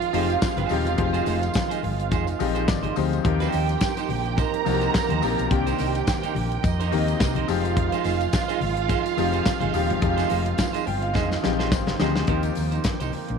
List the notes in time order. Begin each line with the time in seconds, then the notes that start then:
Already playing: D#3 F3 G#3 C4 D#4 F4 G4 F5
0.01 muted clean electric guitar stroke, closed hi-hat
0.13 F1 F3 G#3 C4 D#4 G4 G#4 C5, open hi-hat, tambourine, high conga
0.29 muted clean electric guitar stroke, closed hi-hat
0.41 muted clean electric guitar stroke, kick, snare, closed hi-hat, tambourine
0.57 G1 D#4 G#4 C5, closed hi-hat, muted conga, high conga, low conga
0.69 D#1 F3 G#3 C4 D#4 G4, muted clean electric guitar stroke, open hi-hat, tambourine, high conga
0.85 E1, muted clean electric guitar stroke, closed hi-hat, tambourine
0.98 F1 F3 G#3 C4 D#4 G4, muted clean electric guitar stroke, kick, closed hi-hat
1.13 D#4 G#4 C5, closed hi-hat, tambourine
1.26 F1 D#4 G#4 C5, open hi-hat, tambourine
1.42 muted clean electric guitar stroke, closed hi-hat, tambourine
1.54 muted clean electric guitar stroke, kick, snare, closed hi-hat, tambourine
1.69 D#4 G#4 C5, closed hi-hat, tambourine
1.82 G1, muted clean electric guitar stroke, open hi-hat, high conga, low conga
1.98 muted clean electric guitar stroke, closed hi-hat
2.11 F1 D#4 G#4 C5, kick, closed hi-hat, tambourine, muted conga, high conga
2.27 muted clean electric guitar stroke, closed hi-hat, tambourine
2.39 A#1 F3 G#3 C4 D#4 G4 D#5, muted clean electric guitar stroke, open hi-hat, tambourine, high conga
2.55 D#4 G#4 C5, closed hi-hat, tambourine
2.68 G#1 D5, muted clean electric guitar stroke, kick, snare, closed hi-hat, tambourine, high conga
2.83 D#4 G#4 C5, closed hi-hat, muted conga, high conga, low conga
2.96 D2 F3 G#3 C4 D#4 G4 C5, muted clean electric guitar stroke, open hi-hat, tambourine, high conga
3.12 muted clean electric guitar stroke, closed hi-hat, tambourine
3.24 D#2 F3 A#3 C4 D#4 G4 G5, muted clean electric guitar stroke, kick, closed hi-hat
3.40 D#4 G4 C5, snare, closed hi-hat, tambourine, muted conga
3.52 D#2 D#4 G4 C5, open hi-hat, tambourine
3.69 muted clean electric guitar stroke, closed hi-hat, tambourine
3.81 muted clean electric guitar stroke, kick, snare, closed hi-hat, tambourine
3.97 D#4 G4 C5, closed hi-hat, tambourine
4.09 A#1, muted clean electric guitar stroke, open hi-hat, high conga, low conga
4.25 muted clean electric guitar stroke, closed hi-hat
4.37 D#4 G4 A#4 C5 A#5, kick, closed hi-hat, tambourine, muted conga, high conga
4.54 muted clean electric guitar stroke, closed hi-hat, muted conga
4.65 C2 F3 A#3 C4 D#4 F#4, muted clean electric guitar stroke, open hi-hat, tambourine, high conga
4.73 G4
4.81 D#4 G4 C5, closed hi-hat, tambourine
4.94 kick, snare, closed hi-hat, tambourine
5.09 D#2 D#4 G4 C5, closed hi-hat, muted conga, high conga, low conga
5.22 A#1 F3 A#3 C4 D#4 G4, muted clean electric guitar stroke, open hi-hat, tambourine, high conga
5.39 B1, muted clean electric guitar stroke, closed hi-hat, tambourine
5.50 C2 D#3 A#3 C4 D4 G4 G5, muted clean electric guitar stroke, kick, closed hi-hat
5.66 D#4 A#4 C5, closed hi-hat, tambourine
5.78 C2 D#4 A#4 C5, open hi-hat, tambourine
5.95 muted clean electric guitar stroke, closed hi-hat, tambourine
6.07 muted clean electric guitar stroke, kick, snare, closed hi-hat, tambourine
6.23 D#4 A#4 C5, closed hi-hat, tambourine, muted conga
6.35 A#1, muted clean electric guitar stroke, open hi-hat, high conga, low conga
6.51 muted clean electric guitar stroke, closed hi-hat
6.63 F2 D#4 D#5, muted clean electric guitar stroke, kick, closed hi-hat, tambourine, high conga
6.80 D#4 A#4 C5, closed hi-hat, tambourine, muted conga
6.91 D#2 D#3 A#3 C4 D#4 G4, muted clean electric guitar stroke, open hi-hat, tambourine, high conga
7.08 muted clean electric guitar stroke, closed hi-hat, tambourine
7.20 C2, muted clean electric guitar stroke, kick, snare, closed hi-hat, tambourine
7.35 D#4 A#4 C5, closed hi-hat, muted conga, high conga, low conga
7.48 F1 F3 G#3 C4 D#4 F4 G4 F5, muted clean electric guitar stroke, open hi-hat, tambourine, high conga
7.64 muted clean electric guitar stroke, closed hi-hat, tambourine
7.77 muted clean electric guitar stroke, kick, closed hi-hat
7.92 D#4 G#4 C5, closed hi-hat, tambourine, muted conga
8.04 F1 D#4 G#4 C5, open hi-hat, tambourine
8.21 muted clean electric guitar stroke, closed hi-hat, tambourine
8.32 muted clean electric guitar stroke, kick, snare, closed hi-hat, tambourine, muted conga
8.48 D#4 G#4 C5, closed hi-hat, tambourine
8.61 G#1, muted clean electric guitar stroke, open hi-hat, high conga, low conga
8.77 muted clean electric guitar stroke, closed hi-hat
8.88 D#4 G#4 C5, kick, closed hi-hat, tambourine, high conga
9.05 muted clean electric guitar stroke, closed hi-hat, tambourine
9.17 F1 F3 G#3 C4 D#4 G4, muted clean electric guitar stroke, open hi-hat, tambourine, high conga
9.33 D#4 G#4 C5, closed hi-hat, tambourine
9.45 muted clean electric guitar stroke, kick, snare, closed hi-hat, tambourine
9.60 G1 D#4 G#4 C5, closed hi-hat, high conga, low conga
9.73 D#1 F3 G#3 C4 D#4 G4, muted clean electric guitar stroke, open hi-hat, tambourine, high conga
9.89 E1, muted clean electric guitar stroke, closed hi-hat
10.01 F1 F3 G#3 C4 D#4 G4, muted clean electric guitar stroke, kick, closed hi-hat
10.17 D#4 G#4 C5, snare, closed hi-hat, tambourine, muted conga
10.29 F1 D#4 G#4 C5, open hi-hat, tambourine
10.46 muted clean electric guitar stroke, closed hi-hat
10.57 muted clean electric guitar stroke, kick, snare, closed hi-hat, tambourine
10.73 D#4 G#4 C5, closed hi-hat, tambourine, muted conga
10.86 G1 G5, muted clean electric guitar stroke, open hi-hat, high conga, low conga
11.01 F5, muted clean electric guitar stroke, closed hi-hat
11.14 F1 D#4 G#4 C5 D#5, kick, snare, tambourine, high conga
11.30 muted clean electric guitar stroke, snare, tambourine, muted conga
11.43 A#1 F3 G#3 C4 D#4 G4, muted clean electric guitar stroke, snare, tambourine, high conga
11.59 D#4 G#4 C5, snare
11.71 G#1 C5, muted clean electric guitar stroke, kick, snare, tambourine
11.87 muted clean electric guitar stroke, snare, muted conga, high conga, low conga
12.00 D2 F3 G#3 C4 D#4 G4 G#4 C5, snare, tambourine, high conga
12.16 D#4 G#4 C5, snare
12.27 D#2 D#3 F3 A#3 C4 D#4 G4 C5, kick, closed hi-hat
12.43 muted clean electric guitar stroke, closed hi-hat, tambourine
12.55 D#2, muted clean electric guitar stroke, open hi-hat, tambourine
12.71 D#4 G4 C5, closed hi-hat, tambourine
12.84 muted clean electric guitar stroke, kick, snare, closed hi-hat, tambourine
13.00 C2 D#4 G4 C5, closed hi-hat, tambourine, muted conga
13.12 muted clean electric guitar stroke, open hi-hat, high conga, low conga
13.29 A#1, muted clean electric guitar stroke, closed hi-hat